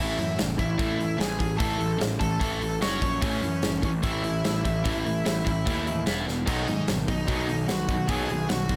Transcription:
Already playing: picked electric bass A1, distorted electric guitar A2 E3, lead electric guitar E4
0.00 distorted electric guitar A3, lead electric guitar E5
0.18 picked electric bass F#2, distorted electric guitar A2 E3, open hi-hat
0.39 picked electric bass F#1, distorted electric guitar A2 E3, snare, open hi-hat
0.58 picked electric bass A1, distorted electric guitar A2 E3, lead electric guitar E4 E5, kick, open hi-hat
0.78 picked electric bass A1, distorted electric guitar A2 E3 A3, kick, open hi-hat
0.99 distorted electric guitar A2 E3, open hi-hat
1.18 picked electric bass A1, distorted electric guitar A2 E3, lead electric guitar G#4 G#5, snare, open hi-hat
1.39 picked electric bass A1, distorted electric guitar A2 E3, kick, open hi-hat
1.58 picked electric bass A1, distorted electric guitar A2 E3 A3, lead electric guitar A4 A5, kick, open hi-hat
1.78 picked electric bass A1, distorted electric guitar A2 E3, open hi-hat
1.98 picked electric bass A1, distorted electric guitar A2 E3, snare, open hi-hat
2.19 picked electric bass A1, distorted electric guitar A2 E3, lead electric guitar A4 A5, kick, open hi-hat
2.40 picked electric bass A1, distorted electric guitar A2 E3 A3, kick, open hi-hat
2.60 distorted electric guitar A2 E3, open hi-hat
2.81 picked electric bass F#1, distorted electric guitar F#3 C#4 F#4, lead electric guitar C#5 C#6, snare, open hi-hat
3.02 picked electric bass A#1, distorted electric guitar F#3 C#4, kick, open hi-hat
3.21 picked electric bass A1, distorted electric guitar A2 E3 A3, lead electric guitar C#4 C#5, kick, open hi-hat
3.41 picked electric bass F#2, distorted electric guitar A2 E3, open hi-hat
3.62 picked electric bass F#1, distorted electric guitar A2 E3, snare, open hi-hat
3.82 picked electric bass A1, distorted electric guitar A2 E3, lead electric guitar C#4 C#5, kick, open hi-hat
4.02 picked electric bass A1, distorted electric guitar A2 E3 A3, lead electric guitar E4 E5, kick, open hi-hat
4.23 distorted electric guitar A2 E3, open hi-hat
4.44 picked electric bass A1, distorted electric guitar A2 E3, snare, open hi-hat
4.65 picked electric bass A1, distorted electric guitar A2 E3, kick, open hi-hat
4.84 picked electric bass A1, distorted electric guitar A2 E3 A3, kick, open hi-hat
5.06 picked electric bass A1, distorted electric guitar A2 E3, open hi-hat
5.25 picked electric bass A1, distorted electric guitar A2 E3, snare, open hi-hat
5.45 picked electric bass A1, distorted electric guitar A2 E3, kick, open hi-hat
5.66 picked electric bass D#2, distorted electric guitar A2 E3 A3, kick, open hi-hat
5.87 distorted electric guitar A2 E3, open hi-hat
6.06 picked electric bass E1, distorted electric guitar E3 B3 E4, snare, open hi-hat
6.26 picked electric bass E1, distorted electric guitar E3 B3, snare
6.46 picked electric bass B1, distorted electric guitar B2 D#3 F#3, overdriven electric guitar B3, lead electric guitar D#4 D#5, kick, open hi-hat, crash
6.67 picked electric bass G#2, distorted electric guitar B2 D#3, overdriven electric guitar F#3, open hi-hat
6.88 picked electric bass G#1, distorted electric guitar B2 D#3, overdriven electric guitar F#3, snare, open hi-hat
7.08 picked electric bass B1, distorted electric guitar B2 D#3, overdriven electric guitar F#3, lead electric guitar D#4 D#5, kick, open hi-hat
7.27 picked electric bass B1, distorted electric guitar B2 D#3 F#3, overdriven electric guitar B3, kick, open hi-hat
7.48 distorted electric guitar B2 D#3, overdriven electric guitar F#3, open hi-hat
7.68 picked electric bass B1, distorted electric guitar B2 D#3, overdriven electric guitar F#3, lead electric guitar F#4 F#5, snare, open hi-hat
7.88 picked electric bass B1, distorted electric guitar B2 D#3, overdriven electric guitar F#3, kick, open hi-hat
8.08 picked electric bass B1, distorted electric guitar B2 D#3 F#3, overdriven electric guitar B3, lead electric guitar G#4 G#5, kick, open hi-hat
8.29 picked electric bass B1, distorted electric guitar B2 D#3, overdriven electric guitar F#3, open hi-hat
8.49 picked electric bass B1, distorted electric guitar B2 D#3, overdriven electric guitar F#3, lead electric guitar F#4 F#5, snare, open hi-hat
8.69 picked electric bass B1, distorted electric guitar B2 D#3, overdriven electric guitar F#3, kick, open hi-hat

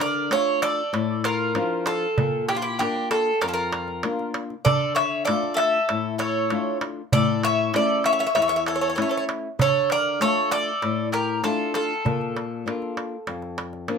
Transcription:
Already playing: nylon-string guitar D3
0.00 mandolin A#4, bouzouki D5, darbuka tek
0.30 nylon-string guitar A3 D4 F4, mandolin A4, bouzouki C#5, darbuka tek
0.62 mandolin A4, bouzouki D5, darbuka tek
0.93 nylon-string guitar A2, darbuka tek
1.24 mandolin F4, bouzouki A#4, darbuka tek
1.55 nylon-string guitar F3 D4 F4, darbuka tek
1.86 mandolin F4, bouzouki A4, darbuka tek
2.18 nylon-string guitar A#2, darbuka dum
2.49 mandolin E4, bouzouki G4, darbuka tek
2.55 mandolin D4, bouzouki F4
2.62 mandolin E4, bouzouki G4
2.79 nylon-string guitar A#3 D4 F4, mandolin D4, bouzouki G4, darbuka tek
2.96 darbuka tek
3.11 mandolin F4, bouzouki A4, darbuka tek
3.41 nylon-string guitar F2, mandolin F4, bouzouki A#4, darbuka tek
3.48 mandolin F4, bouzouki A4
3.54 mandolin F4, bouzouki A#4
3.73 darbuka tek
3.88 darbuka tek
4.03 nylon-string guitar A#3 D4 F4, darbuka tek
4.19 darbuka tek
4.34 darbuka tek
4.50 darbuka tek
4.65 nylon-string guitar D3, mandolin A4, bouzouki D5, darbuka dum
4.95 mandolin C#5, bouzouki E5, darbuka tek
5.25 nylon-string guitar A3 D4, mandolin A4, bouzouki D5, darbuka tek
5.29 nylon-string guitar F4
5.43 darbuka tek
5.54 mandolin A4, bouzouki E5, darbuka tek
5.89 nylon-string guitar A2, darbuka tek
6.18 mandolin A4, bouzouki C#5, darbuka tek
6.50 nylon-string guitar A3 D4 F4, darbuka tek
6.81 darbuka tek
7.12 nylon-string guitar A2, mandolin A4, bouzouki D5, darbuka dum
7.43 mandolin C#5, bouzouki E5, darbuka tek
7.74 nylon-string guitar C#3 A3 E4, mandolin A4, bouzouki D5, darbuka tek
7.89 darbuka tek
8.04 mandolin C#5, bouzouki E5, darbuka tek
8.12 mandolin C#5, bouzouki E5
8.19 mandolin C#5, bouzouki E5
8.27 mandolin C#5, bouzouki E5
8.35 nylon-string guitar E2, mandolin C#5, bouzouki E5, darbuka tek
8.42 mandolin C#5, bouzouki E5
8.48 mandolin C#5, bouzouki E5
8.56 mandolin C#5, bouzouki E5
8.66 mandolin A4, bouzouki C#5, darbuka tek
8.74 mandolin A4, bouzouki C#5
8.81 mandolin A4, bouzouki C#5
8.88 mandolin A4, bouzouki C#5
8.95 nylon-string guitar A3 C#4 E4, mandolin A4, bouzouki C#5, darbuka tek
9.02 mandolin A4, bouzouki C#5
9.09 mandolin A4, bouzouki C#5
9.17 mandolin A4, bouzouki C#5
9.29 darbuka tek
9.59 nylon-string guitar D3, mandolin A4, bouzouki C#5, darbuka dum
9.90 mandolin A#4, bouzouki D5, darbuka tek
10.20 nylon-string guitar A3 D4 F4, mandolin A4, bouzouki C#5, darbuka tek
10.37 darbuka tek
10.51 mandolin A4, bouzouki D5, darbuka tek
10.82 nylon-string guitar A2, darbuka tek
11.12 mandolin G4, bouzouki A#4, darbuka tek
11.43 nylon-string guitar A3 D4 F4, mandolin F4, bouzouki A4, darbuka tek
11.74 mandolin F4, bouzouki A4, darbuka tek
12.05 nylon-string guitar A#2, darbuka dum
12.21 darbuka tek
12.37 darbuka tek
12.66 nylon-string guitar A#3 D4 F4, darbuka tek
12.82 darbuka tek
12.97 darbuka tek
13.27 nylon-string guitar F2, darbuka tek
13.42 darbuka tek
13.58 darbuka tek
13.73 darbuka tek
13.88 nylon-string guitar F3 A#3 D4, darbuka tek

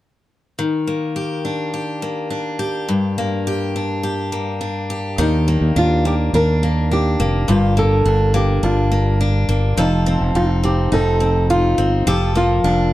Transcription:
0.59 steel-string acoustic guitar D#3
0.87 steel-string acoustic guitar A#3
1.16 steel-string acoustic guitar G4
1.45 steel-string acoustic guitar D4
1.74 steel-string acoustic guitar G4
2.02 steel-string acoustic guitar A#3
2.30 steel-string acoustic guitar D4
2.59 steel-string acoustic guitar G4
2.89 steel-string acoustic guitar G2
3.18 steel-string acoustic guitar A#3
3.47 steel-string acoustic guitar G4
3.76 steel-string acoustic guitar D4
4.03 steel-string acoustic guitar G4
4.32 steel-string acoustic guitar A#3
4.61 steel-string acoustic guitar D4
4.90 steel-string acoustic guitar G4
5.18 fingered electric bass D#2, steel-string acoustic guitar D#3 G4, nylon-string guitar D#4
5.48 steel-string acoustic guitar A#3
5.61 fingered electric bass D#2
5.76 fingered electric bass D#2, steel-string acoustic guitar D4, nylon-string guitar F4
6.05 steel-string acoustic guitar A#3, nylon-string guitar G4
6.33 fingered electric bass D#2, steel-string acoustic guitar D4, nylon-string guitar A#4
6.63 steel-string acoustic guitar A#3
6.91 steel-string acoustic guitar D4, nylon-string guitar G4
7.20 fingered electric bass F1, steel-string acoustic guitar A#3
7.48 fingered electric bass G1, steel-string acoustic guitar G2 G4, nylon-string guitar F4
7.77 steel-string acoustic guitar A#3, nylon-string guitar A4
8.05 fingered electric bass G1, steel-string acoustic guitar D4
8.34 steel-string acoustic guitar A#3, nylon-string guitar G4
8.63 fingered electric bass G1, steel-string acoustic guitar D4, nylon-string guitar F4
8.92 steel-string acoustic guitar A#3
9.21 steel-string acoustic guitar D4
9.49 fingered electric bass G1, steel-string acoustic guitar A#3
9.77 fingered electric bass F1, steel-string acoustic guitar F3 A4, nylon-string guitar D#4
10.06 steel-string acoustic guitar C4
10.21 fingered electric bass F1
10.35 fingered electric bass F1, steel-string acoustic guitar D#4, nylon-string guitar F4
10.63 steel-string acoustic guitar C4, nylon-string guitar G4
10.92 fingered electric bass F1, steel-string acoustic guitar D#4, nylon-string guitar A4
11.20 steel-string acoustic guitar C4
11.50 steel-string acoustic guitar D#4, nylon-string guitar F4
11.78 fingered electric bass G1, steel-string acoustic guitar C4
12.07 fingered electric bass F1, steel-string acoustic guitar F3 A4, nylon-string guitar G4
12.35 steel-string acoustic guitar A#3, nylon-string guitar F4
12.64 fingered electric bass F1, steel-string acoustic guitar D4

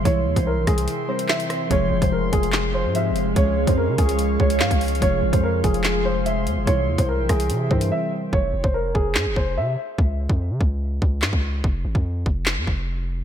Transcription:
0.03 808-style bass C2, synth keys C3 E3 E4, grand piano C#5, ambient pad E5 G5 C6, kick, closed hi-hat
0.26 808-style bass E2
0.36 808-style bass C2, grand piano C5, kick, closed hi-hat
0.47 grand piano A#4
0.57 808-style bass A#1
0.67 808-style bass C2, grand piano G#4, kick, cross-stick, closed hi-hat
0.78 closed hi-hat
0.88 closed hi-hat
1.08 synth keys E3 G3 C4 E4 A#4, grand piano C5
1.19 closed hi-hat
1.29 grand piano E5, snare, clap
1.40 closed hi-hat
1.50 cross-stick, closed hi-hat
1.69 808-style bass F1, synth keys C3 F3 G#3 F4, ambient pad G#3 F5, grand piano C#5, kick, closed hi-hat
1.73 synth keys G#4
1.91 808-style bass F1
2.02 808-style bass F1, grand piano C5, kick, closed hi-hat
2.12 grand piano A#4
2.32 808-style bass F1, grand piano G#4, kick, closed hi-hat
2.43 closed hi-hat
2.53 snare, clap
2.74 grand piano C5
2.85 808-style bass G#2
2.94 synth keys F3 G#3 C4 F4 G4, grand piano E5, closed hi-hat
3.10 808-style bass F1
3.16 closed hi-hat
3.34 808-style bass C#2, synth keys F3 G#3 C#4 F4, ambient pad C#5 C#6, grand piano C#5, kick, closed hi-hat
3.39 synth keys G#4
3.67 808-style bass F2, grand piano C5, kick, closed hi-hat
3.78 grand piano A#4
3.88 808-style bass C#3
3.98 808-style bass C#2, grand piano G#4, kick, closed hi-hat
4.09 closed hi-hat
4.19 closed hi-hat
4.40 808-style bass C#2, grand piano C#5, kick
4.50 closed hi-hat
4.60 808-style bass G#2, grand piano F5, snare, clap
4.71 808-style bass C#2, kick, closed hi-hat
4.81 closed hi-hat, open hi-hat
4.88 closed hi-hat
4.95 closed hi-hat
5.00 808-style bass F1, synth keys C3 F3 G#3 F4, ambient pad G#4 C6, grand piano C#5, kick, closed hi-hat
5.04 synth keys G#4
5.23 808-style bass G#1
5.33 808-style bass F2, grand piano C5, kick, closed hi-hat
5.43 grand piano A#4
5.64 808-style bass F1, grand piano G#4, kick, closed hi-hat
5.74 closed hi-hat
5.84 snare, clap
6.05 grand piano C5
6.26 grand piano E5, closed hi-hat
6.47 808-style bass F2, closed hi-hat
6.57 808-style bass F1
6.65 808-style bass C2, synth keys C3 E3 E4, grand piano C#5, ambient pad E5 G5, kick, closed hi-hat
6.88 808-style bass E2
6.98 808-style bass C2, grand piano C5, kick, closed hi-hat
7.09 grand piano A#4
7.19 808-style bass A#1
7.29 808-style bass C2, grand piano G#4, kick, cross-stick, closed hi-hat
7.40 closed hi-hat
7.50 808-style bass C3, closed hi-hat
7.70 808-style bass G2, synth keys E3 G3 C4 E4 A#4, grand piano C5, kick
7.81 closed hi-hat
7.92 grand piano E5
8.33 808-style bass F1, grand piano C#5, kick
8.54 808-style bass F1
8.64 808-style bass F1, grand piano C5, kick
8.74 grand piano A#4
8.95 808-style bass F1, grand piano G#4, kick
9.15 808-style bass G#2, snare, clap
9.26 808-style bass F1
9.36 808-style bass F1, grand piano C5, kick
9.57 808-style bass C3, grand piano E5
9.98 808-style bass C#2, kick
10.29 808-style bass F2, kick
10.50 808-style bass C#3
10.61 808-style bass C#2, kick
11.02 808-style bass C#2, kick
11.22 808-style bass G#2, snare, clap
11.33 808-style bass C#2, kick
11.64 808-style bass F1, kick
11.85 808-style bass G#1
11.95 808-style bass F2, kick
12.26 808-style bass F1, kick
12.46 snare, clap
12.57 808-style bass F2
12.67 808-style bass F1, kick

